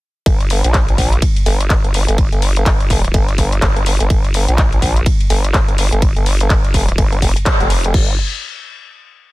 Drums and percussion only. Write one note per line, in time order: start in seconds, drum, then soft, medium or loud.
0.26 kick loud
0.26 closed hi-hat medium
0.26 ride medium
0.40 closed hi-hat soft
0.50 open hi-hat loud
0.64 closed hi-hat medium
0.74 kick loud
0.74 clap loud
0.74 closed hi-hat medium
0.74 ride medium
0.89 closed hi-hat soft
0.98 kick medium
0.98 open hi-hat loud
1.13 closed hi-hat medium
1.22 kick loud
1.22 closed hi-hat medium
1.22 ride medium
1.36 closed hi-hat soft
1.46 open hi-hat loud
1.60 closed hi-hat medium
1.70 kick loud
1.70 clap loud
1.70 closed hi-hat medium
1.70 ride medium
1.84 closed hi-hat soft
1.94 open hi-hat loud
2.08 closed hi-hat medium
2.18 kick loud
2.18 closed hi-hat medium
2.18 ride medium
2.32 closed hi-hat soft
2.42 open hi-hat loud
2.56 closed hi-hat medium
2.66 kick loud
2.66 clap loud
2.66 closed hi-hat medium
2.66 ride medium
2.80 closed hi-hat soft
2.90 kick medium
2.90 open hi-hat loud
3.04 closed hi-hat medium
3.14 kick loud
3.14 closed hi-hat medium
3.14 ride medium
3.28 closed hi-hat soft
3.38 kick medium
3.38 open hi-hat loud
3.52 closed hi-hat medium
3.62 kick loud
3.62 clap loud
3.62 closed hi-hat medium
3.62 ride medium
3.76 closed hi-hat soft
3.86 open hi-hat loud
4.00 closed hi-hat medium
4.10 kick loud
4.10 closed hi-hat medium
4.10 ride medium
4.24 closed hi-hat soft
4.34 open hi-hat loud
4.48 closed hi-hat medium
4.58 kick loud
4.58 clap loud
4.58 closed hi-hat medium
4.58 ride medium
4.73 closed hi-hat soft
4.82 kick medium
4.82 open hi-hat loud
4.97 closed hi-hat medium
5.06 kick loud
5.06 closed hi-hat medium
5.06 ride medium
5.21 closed hi-hat soft
5.30 open hi-hat loud
5.45 closed hi-hat medium
5.54 kick loud
5.54 clap loud
5.54 closed hi-hat medium
5.54 ride medium
5.68 closed hi-hat soft
5.78 open hi-hat loud
5.92 closed hi-hat medium
6.02 kick loud
6.02 closed hi-hat medium
6.02 ride medium
6.17 closed hi-hat soft
6.26 open hi-hat loud
6.40 closed hi-hat soft
6.50 kick loud
6.50 clap loud
6.50 closed hi-hat medium
6.50 ride medium
6.64 closed hi-hat soft
6.74 kick medium
6.74 open hi-hat loud
6.88 closed hi-hat soft
6.98 kick loud
6.98 closed hi-hat medium
6.98 ride medium
7.12 closed hi-hat soft
7.22 kick medium
7.22 open hi-hat loud
7.36 closed hi-hat medium
7.46 kick loud
7.46 clap loud
7.46 closed hi-hat medium
7.46 ride medium
7.60 closed hi-hat soft
7.70 open hi-hat loud
7.84 closed hi-hat soft
7.94 kick loud
7.94 crash medium